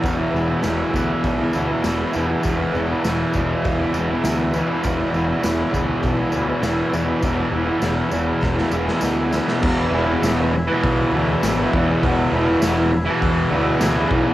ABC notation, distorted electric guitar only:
X:1
M:4/4
L:1/16
Q:1/4=100
K:Emix
V:1 name="Distorted electric guitar" clef=bass
[E,,B,,E,] [B,,E,] [E,,B,,E,] [B,,E,] [E,,B,,E,]2 [E,,B,,E,]3 [B,,E,] [E,,B,,E,] [B,,E,] [E,,B,,E,]2 [E,,B,,E,] [B,,E,] | [E,,B,,E,] [B,,E,] [E,,B,,E,] [B,,E,] [E,,B,,E,]2 [E,,B,,E,]3 [B,,E,] [E,,B,,E,] [B,,E,] [E,,B,,E,]2 [E,,B,,E,] [B,,E,] | [E,,B,,E,] [B,,E,] [E,,B,,E,] [B,,E,] [E,,B,,E,]2 [E,,B,,E,]3 [B,,E,] [E,,B,,E,] [B,,E,] [E,,B,,E,]2 [E,,B,,E,] [B,,E,] | [E,,B,,E,] [B,,E,] [E,,B,,E,] [B,,E,] [E,,B,,E,]2 [E,,B,,E,]3 [B,,E,] [E,,B,,E,] [B,,E,] [E,,B,,E,]2 [E,,B,,E,] [B,,E,] |
[E,,B,,E,]2 [E,,B,,E,] [B,,E,] [E,,B,,E,] [B,,E,]2 [B,,E,]3 [E,,B,,E,]2 [E,,B,,E,] [B,,E,] [E,,B,,E,] [B,,E,] | [E,,B,,E,]2 [E,,B,,E,] [B,,E,] [E,,B,,E,] [B,,E,]2 [B,,E,]3 [E,,B,,E,]2 [E,,B,,E,] [B,,E,] [E,,B,,E,] [B,,E,] |]